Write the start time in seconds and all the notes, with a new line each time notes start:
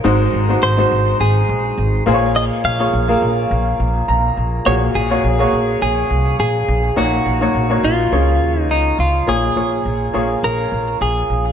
0.04 G#1 G#2 G#3 D#4 F#4 C5
0.34 G#1
0.49 G#3 D#4 F#4 C5
0.62 G#1 C5
0.78 G#3 D#4 F#4 C5
0.91 G#1
1.20 G#1 G#4
1.49 A#1
1.78 G#1
2.06 A#1 A#2 A#3 F4 G#4 C5
2.14 C#5
2.36 D#5
2.64 A#1 F5
2.79 A#3 F4 G#4 C#5
2.93 A#1
3.08 A#3 F4 G#4 A#4
3.22 A#1
3.51 A#1
3.80 A#1
4.08 A#1 A#5
4.37 A#1
4.65 A#1 A#2 A#3 F#4 G#4 C#5
4.95 A#1 G#4
5.10 A#3 F#4 G#4 C#5
5.24 A#1
5.39 A#3 F#4 G#4 C#5
5.53 A#1
5.81 A#1 G#4
6.10 C2
6.39 A#1 G#4
6.68 A#1
6.96 A#1 A#2 A#3 D#4 F#4 C#5
7.26 A#1
7.41 A#3 D#4 F#4 C#5
7.55 A#1
7.70 A#3 D#4 F#4 C#5
7.83 A#1 F4
8.12 C#2 C#3 A#3 F4 G#4 C#5
8.41 D#2
8.60 D#4
8.70 C#2 D#4
8.99 C#2 F4
9.27 A#1 A#2 A#3 F4 G#4 C#5
9.56 A#1 A#3 F4 G#4 C#5
9.85 A#1
10.13 A#1 A#3 F4 G#4 C#5
10.43 A#1 A#4
10.72 A#1
11.01 A#1 G#4
11.29 A#1